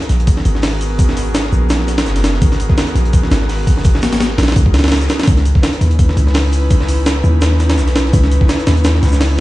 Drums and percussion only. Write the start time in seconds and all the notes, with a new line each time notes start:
0.01 snare, closed hi-hat
0.09 snare, open hi-hat, shaker
0.20 closed hi-hat
0.27 kick, open hi-hat, shaker
0.37 snare
0.45 open hi-hat, shaker
0.55 snare
0.62 snare, open hi-hat
0.81 open hi-hat, shaker
0.99 kick, open hi-hat, shaker
1.09 snare
1.17 open hi-hat, shaker
1.34 snare, open hi-hat, shaker
1.44 snare
1.52 shaker
1.70 snare, open hi-hat, shaker
1.80 snare
1.88 snare, open hi-hat, shaker
1.98 snare, open hi-hat
2.06 snare, shaker
2.16 snare, open hi-hat
2.24 snare, open hi-hat, shaker
2.34 snare
2.42 kick, open hi-hat, shaker
2.52 snare, closed hi-hat
2.60 open hi-hat, shaker
2.69 kick, snare
2.77 snare, open hi-hat, shaker
2.87 snare, closed hi-hat
2.96 snare, open hi-hat, shaker
3.05 closed hi-hat
3.13 kick, open hi-hat, shaker
3.23 snare
3.31 snare, open hi-hat, shaker
3.41 snare
3.49 snare, open hi-hat
3.67 kick, open hi-hat, shaker
3.77 snare
3.84 kick, open hi-hat, shaker
3.94 snare
4.02 snare, open hi-hat, shaker
4.13 snare, open hi-hat
4.20 snare, open hi-hat, shaker
4.30 snare
4.38 snare, open hi-hat, shaker
4.43 snare, open hi-hat
4.48 snare, open hi-hat
4.52 snare, open hi-hat
4.56 kick, open hi-hat, shaker
4.66 kick
4.74 snare, open hi-hat, shaker
4.79 snare, open hi-hat
4.84 snare, open hi-hat
4.88 snare, open hi-hat, shaker
4.92 snare, open hi-hat
4.96 snare, shaker
5.01 snare, shaker
5.09 snare, open hi-hat, shaker
5.19 snare, open hi-hat
5.23 snare, open hi-hat
5.27 kick, open hi-hat, shaker
5.37 snare, closed hi-hat
5.45 open hi-hat, shaker
5.55 kick, snare
5.63 snare, open hi-hat, shaker
5.73 snare, closed hi-hat
5.81 snare, open hi-hat, shaker
5.91 closed hi-hat
5.99 kick, open hi-hat, shaker
6.09 snare
6.17 open hi-hat, shaker
6.27 snare
6.34 snare, open hi-hat
6.52 open hi-hat, shaker
6.70 kick, open hi-hat, shaker
6.80 snare
6.88 open hi-hat, shaker
7.06 snare, open hi-hat, shaker
7.16 snare
7.24 shaker
7.41 snare, open hi-hat, shaker
7.52 snare
7.59 snare, open hi-hat, shaker
7.70 snare, open hi-hat
7.78 snare, shaker
7.88 snare, open hi-hat
7.96 snare, open hi-hat, shaker
8.05 snare
8.13 kick, open hi-hat, shaker
8.23 snare, closed hi-hat
8.31 open hi-hat, shaker
8.41 kick, snare
8.49 snare, open hi-hat, shaker
8.59 snare, closed hi-hat
8.67 snare, open hi-hat, shaker
8.77 closed hi-hat
8.84 snare, open hi-hat, shaker
8.95 snare
9.03 snare, open hi-hat, shaker
9.07 snare, shaker
9.12 snare, shaker
9.20 snare, open hi-hat